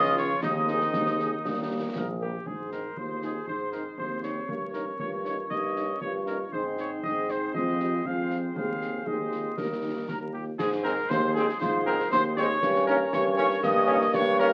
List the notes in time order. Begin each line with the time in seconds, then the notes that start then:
Already playing: C#2 F3 C#4 F4 D#5 D#6
0.05 snare
0.16 C#3 A#3 C#4 F4 C#5 C#6, snare
0.42 D#2 D#3 G#3 C4 D#4 D#5 D#6, concert bass drum, snare, crash
0.68 G#3 C4 G#4, snare
0.81 snare
0.93 D#2, concert bass drum, snare
1.06 snare
1.19 G#3 C4 G#4, snare
1.45 D#2 G3 A#3, concert bass drum, snare
1.70 G3 A#3 A#4
1.95 A#1 A#4, concert bass drum, snare
2.20 G3 A#3 G4 A#4
2.46 G#2 G#4 C5, concert bass drum
2.70 G#3 C4 D#4 A#4, snare
2.97 D#2 F4 C5, concert bass drum
3.22 G#3 C4 D#4 G#4, snare
3.47 G#2 D#4 C5, concert bass drum
3.72 G#3 C4 D#4 A#4, snare
3.98 D#2 C4 C5, concert bass drum
4.23 G#3 C4 D#4 C#5, snare
4.48 G2 A#3 A#4 C#5, concert bass drum
4.74 A#3 C#4 D#4 A#4, snare
4.99 G2 F4 C#5, concert bass drum
5.25 A#3 C#4 D#4 C#5, snare
5.50 G2 D#4 D#5, concert bass drum
5.76 A#3 C#4 D#4, snare
6.01 G2 F4 C#5, concert bass drum
6.26 A#3 C#4 D#4 A#4, snare
6.51 G#2 G#3 C4 D#4 G#4 C5, concert bass drum
6.78 C#5, snare
7.02 G#2 G#3 C4 D#4 D#5, concert bass drum
7.29 C5, snare
7.54 F2 G#3 C4 F4 G#4 D#5, concert bass drum
7.80 G4, snare
8.04 F2 G#3 C4 F4 F5, concert bass drum
8.30 snare
8.55 D#2 G#3 C4 G#4 C5 F5, concert bass drum
8.82 snare
9.05 D#2 G#3 C4 D#4 G#4 D#5, concert bass drum
9.32 F4, snare
9.57 D#2 G3 A#3 G4 A#4, concert bass drum, snare
9.82 D#4
10.07 D#2 G4 A#4 A#5, concert bass drum, snare
10.33 F4 G4 G5
10.58 G#2 G#4 C5 G#5, concert bass drum, snare, crash
10.72 snare
10.82 G#3 C4 G#4 A#4 A#5, snare
11.09 D#2 G#4 C5 C6, concert bass drum, snare
11.34 G#3 C4 G#4 G#5, snare
11.49 snare
11.60 G#2 F4 C5 C6, concert bass drum, snare
11.84 G#3 C4 G#4 A#4 A#5
12.00 snare
12.11 D#2 D#4 C5 C6, concert bass drum, snare
12.36 G#3 C4 G#4 C#5 C#6, snare
12.61 G2 C#4 A#4 C#5, concert bass drum, snare, crash
12.75 snare
12.87 A#3 C#4 D#4 A#4 A#5, snare
13.12 G2 C#5 C#6, concert bass drum, snare
13.37 A#3 C#4 D#4 A#4 C#5 C#6, snare
13.51 snare
13.62 G2 A#3 D#5 D#6, concert bass drum, snare
13.86 A#3 C#4 D#4 A#4
14.01 snare
14.13 G2 C#5 C#6, concert bass drum, snare
14.39 A#3 C#4 D#4 A#4 A#5, snare